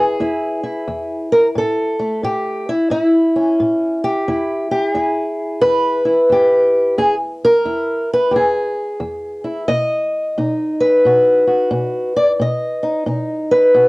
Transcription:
0.00 0.15 E2 medium
0.00 0.20 E4 soft
0.00 1.31 G#4 medium
0.20 0.83 E2 medium
0.20 0.63 E4 medium
0.64 1.99 E4 soft
0.88 1.51 E2 medium
1.32 1.47 A#4 loud
1.55 2.18 A2 medium
1.55 2.24 A4 medium
1.99 2.67 A3 soft
2.23 2.86 A2 medium
2.23 2.67 G4 medium
2.69 2.90 E4 medium
2.90 3.53 A2 medium
2.90 4.27 E4 medium
3.36 4.03 C#4 medium
3.60 4.22 A2 medium
4.04 4.71 G4 medium
4.28 4.90 E2 medium
4.28 4.95 E4 soft
4.71 4.91 G4 medium
4.91 5.57 E2 medium
4.91 6.04 E4 soft
4.91 6.06 G#4 medium
5.62 6.25 E2 medium
5.62 6.98 B4 loud
6.05 6.95 E4 soft
6.30 6.93 E2 medium
6.30 6.99 G4 medium
6.98 7.61 E2 medium
6.98 7.14 G#4 medium
7.45 8.11 A#4 loud
7.65 8.29 E2 medium
7.65 8.29 E4 soft
8.13 8.35 B4 medium
8.31 8.96 E2 medium
8.31 8.35 G4 medium
8.36 9.68 G#4 medium
9.00 9.64 E2 medium
9.44 9.66 E4 soft
9.68 10.32 B2 medium
9.68 11.05 D#5 loud
10.38 11.01 B2 medium
10.38 12.39 D#4 soft
10.80 12.84 B4 medium
11.05 11.68 B2 medium
11.05 11.46 F#4 medium
11.47 12.16 F#4 soft
11.71 12.35 B2 medium
12.16 12.31 D5 medium
12.39 13.03 B2 medium
12.39 13.75 D#5 medium
12.83 13.05 D#4 medium
13.06 13.71 B2 medium
13.06 13.88 D#4 soft
13.51 13.88 B4 medium
13.74 13.88 B2 medium
13.74 13.88 F#4 medium

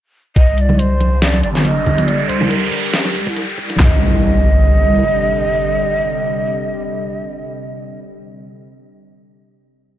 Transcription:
0.36 1.42 C2 loud
0.36 2.06 C3 medium
0.36 3.76 D3 medium
0.36 3.76 G3 medium
0.36 0.58 D#5 loud
0.36 kick loud
0.36 closed hi-hat medium
0.36 riser medium
0.58 0.81 D5 loud
0.58 0.62 D#5 medium
0.58 closed hi-hat soft
0.69 high conga medium
0.69 low conga medium
0.79 1.23 C5 loud
0.79 closed hi-hat medium
1.00 closed hi-hat medium
1.00 high conga medium
1.22 1.43 D5 loud
1.22 snare loud
1.22 closed hi-hat medium
1.34 closed hi-hat soft
1.34 high conga medium
1.43 1.85 G1 medium
1.43 1.49 D5 loud
1.43 closed hi-hat medium
1.55 snare soft
1.65 2.09 D#5 loud
1.65 closed hi-hat medium
1.65 high conga medium
1.86 2.28 G1 medium
1.86 kick medium
1.86 low conga medium
1.98 closed hi-hat medium
1.98 high conga medium
2.07 3.77 G4 medium
2.07 2.30 D5 loud
2.07 closed hi-hat medium
2.29 2.71 C2 loud
2.29 2.51 C5 medium
2.29 closed hi-hat medium
2.41 high conga medium
2.41 low conga loud
2.50 3.36 A#4 medium
2.50 closed hi-hat medium
2.72 closed hi-hat medium
2.94 snare loud
2.94 closed hi-hat medium
3.05 closed hi-hat soft
3.05 high conga loud
3.15 3.78 C2 loud
3.15 closed hi-hat medium
3.27 kick loud
3.36 closed hi-hat medium
3.36 high conga medium
3.58 kick medium
3.70 closed hi-hat medium
3.70 high conga medium
3.79 5.04 C2 loud
3.79 7.98 C3 medium
3.79 7.98 D3 medium
3.79 7.98 G3 medium
3.79 7.98 D#5 loud
3.79 kick loud
3.79 snare loud
3.79 clap medium
3.79 impact medium

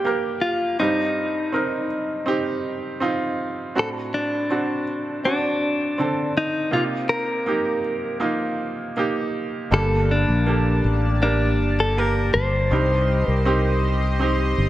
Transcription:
0.00 0.05 A#3 medium
0.00 0.05 G4 soft
0.00 0.45 G4 medium
0.00 0.06 A#4 medium
0.00 0.81 C5 medium
0.05 0.75 A#3 medium
0.05 0.76 G4 soft
0.05 0.76 A#4 medium
0.41 0.79 F4 medium
0.79 1.87 G2 soft
0.79 1.50 C4 medium
0.79 3.35 D#4 medium
0.79 1.50 D#4 soft
0.79 1.51 G4 medium
1.52 2.24 C4 medium
1.52 2.24 D#4 soft
1.52 2.24 A#4 medium
2.26 2.97 C4 medium
2.26 2.98 D#4 medium
2.26 2.98 G4 medium
3.00 3.71 C4 medium
3.00 3.72 D#4 medium
3.00 3.72 F4 medium
3.75 4.83 A2 soft
3.75 4.46 C4 medium
3.75 4.46 D4 soft
3.75 4.47 F#4 medium
3.75 3.89 A4 medium
4.14 5.24 D4 medium
4.50 5.20 C4 medium
4.50 5.21 D4 medium
4.50 5.21 F#4 medium
5.25 5.95 C4 soft
5.25 6.37 D4 medium
5.25 5.95 D4 soft
5.25 5.96 F#4 medium
5.98 6.69 D3 soft
5.98 6.68 C4 medium
5.98 6.69 A4 medium
6.37 6.73 D#4 medium
6.71 7.80 C3 soft
6.71 7.42 A#3 medium
6.71 7.43 D#4 soft
6.71 7.43 F4 medium
6.71 6.83 F4 medium
7.09 8.17 A#4 medium
7.46 8.17 A#3 medium
7.46 8.18 D#4 medium
7.46 8.18 G4 medium
8.20 8.91 A#3 medium
8.20 8.92 D#4 medium
8.20 8.92 F4 medium
8.97 9.68 A#3 medium
8.97 9.68 D#4 medium
8.97 9.69 G4 medium
9.71 10.24 G1 medium
9.71 10.80 G2 soft
9.71 10.80 D3 soft
9.71 10.42 A#3 medium
9.71 12.69 A#3 medium
9.71 10.43 G4 soft
9.71 14.69 G4 medium
9.71 10.43 A4 medium
9.71 10.11 A4 medium
9.71 12.68 D5 medium
9.71 12.68 A5 medium
10.11 11.21 D4 medium
10.28 10.80 A#1 medium
10.46 11.18 A#3 medium
10.46 11.19 G4 soft
10.46 11.19 A4 medium
10.84 11.60 A1 medium
11.22 11.93 A#3 medium
11.22 11.80 D4 medium
11.22 11.94 G4 soft
11.22 11.94 A#4 medium
11.60 12.30 G1 medium
11.80 11.98 A4 medium
11.97 12.68 A#3 soft
11.97 12.68 G4 soft
11.97 12.33 A#4 medium
11.97 12.68 A#4 medium
12.34 12.69 G1 medium
12.34 13.31 C5 medium
12.71 13.23 C2 medium
12.71 13.79 G2 soft
12.71 13.41 C4 medium
12.71 13.42 D#4 soft
12.71 13.42 G4 medium
12.71 14.69 C5 medium
12.71 14.69 D#5 medium
12.71 14.69 C6 medium
13.28 14.53 C2 medium
13.28 13.79 A#4 medium
13.46 14.16 C4 medium
13.46 14.17 D#4 medium
13.46 14.17 G4 medium
14.19 14.57 C4 medium
14.19 14.57 D#4 medium
14.19 14.58 G4 medium
14.58 14.69 G1 medium

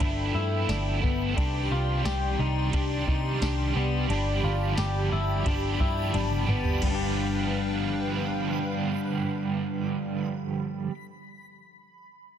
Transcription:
0.00 0.31 G1 loud
0.00 1.02 F3 medium
0.00 1.03 A3 medium
0.00 1.03 B3 medium
0.00 0.35 D4 medium
0.00 1.33 A4 medium
0.00 0.48 B4 medium
0.00 1.16 D5 medium
0.00 1.33 E5 medium
0.00 1.33 G5 medium
0.00 1.33 B5 medium
0.00 kick medium
0.00 ride medium
0.05 1.00 E4 medium
0.34 0.65 G2 loud
0.34 0.69 E4 medium
0.69 0.99 G1 loud
0.69 1.02 D4 medium
0.69 snare loud
0.69 ride medium
0.69 tambourine medium
1.02 1.33 G1 loud
1.02 1.38 A3 medium
1.02 1.36 B3 medium
1.02 1.37 B3 medium
1.02 1.36 E4 medium
1.02 kick medium
1.07 1.36 F3 soft
1.34 1.67 C2 loud
1.34 2.72 C3 medium
1.34 2.70 D#3 medium
1.34 1.71 D4 loud
1.34 6.79 G4 medium
1.34 6.78 D5 medium
1.34 4.07 G5 medium
1.34 4.07 C6 medium
1.34 kick loud
1.34 ride medium
1.39 2.73 G3 medium
1.39 2.75 D4 medium
1.43 2.77 G4 loud
1.71 2.01 C2 medium
1.71 2.05 F4 medium
2.05 2.35 C2 loud
2.05 2.40 G4 medium
2.05 snare loud
2.05 ride medium
2.05 tambourine medium
2.39 2.69 C2 loud
2.39 2.73 D#4 medium
2.71 3.03 C2 loud
2.71 3.75 D#3 medium
2.71 3.79 G3 medium
2.71 3.07 D4 medium
2.71 kick medium
2.71 ride medium
2.76 3.77 D4 medium
2.76 3.73 G4 medium
3.07 3.37 C3 loud
3.07 3.42 D#4 medium
3.07 kick loud
3.41 3.72 C2 loud
3.41 3.76 D4 medium
3.41 4.40 A5 medium
3.41 snare loud
3.41 ride medium
3.41 tambourine medium
3.74 4.06 C2 loud
3.74 4.10 B3 medium
3.74 4.10 D4 medium
3.74 4.09 G4 medium
3.79 4.12 G3 medium
4.07 4.40 G1 loud
4.07 5.45 G2 medium
4.07 6.82 D3 medium
4.07 4.44 D4 medium
4.07 6.80 G5 medium
4.07 6.80 B5 medium
4.07 5.25 B5 medium
4.07 ride medium
4.11 5.44 F3 medium
4.11 5.46 G3 medium
4.11 5.48 B3 medium
4.16 5.49 G4 medium
4.44 4.74 G1 medium
4.44 4.78 F4 medium
4.78 5.08 G1 loud
4.78 5.12 G4 medium
4.78 5.93 A5 medium
4.78 snare loud
4.78 ride medium
4.78 tambourine medium
5.12 5.42 G1 loud
5.12 5.46 E4 medium
5.44 5.76 G1 loud
5.44 6.50 F3 medium
5.44 6.50 G3 medium
5.44 5.80 D4 medium
5.44 6.61 B5 medium
5.44 kick medium
5.44 ride medium
5.48 6.48 B3 medium
5.48 6.46 G4 medium
5.80 6.10 G2 loud
5.80 6.14 E4 medium
5.80 kick loud
6.14 6.44 G1 loud
6.14 6.48 D4 medium
6.14 high tom medium
6.14 ride medium
6.31 mid tom medium
6.47 6.78 G1 loud
6.47 6.84 G3 medium
6.47 6.83 B3 medium
6.47 6.82 G4 medium
6.47 mid tom medium
6.52 6.83 F3 medium
6.65 floor tom loud
6.80 10.84 G1 loud
6.80 10.86 G2 medium
6.80 10.88 D3 medium
6.80 10.90 F3 medium
6.80 10.85 G3 medium
6.80 10.31 D4 medium
6.80 10.31 B4 medium
6.80 10.31 F5 medium
6.80 10.31 G5 medium
6.80 10.31 B5 medium
6.80 kick loud
6.80 crash medium
6.85 10.91 G3 medium
6.85 10.93 B3 medium
6.85 6.90 B3 medium
6.85 10.94 G4 medium
6.91 10.93 D4 medium
6.91 10.97 G4 medium

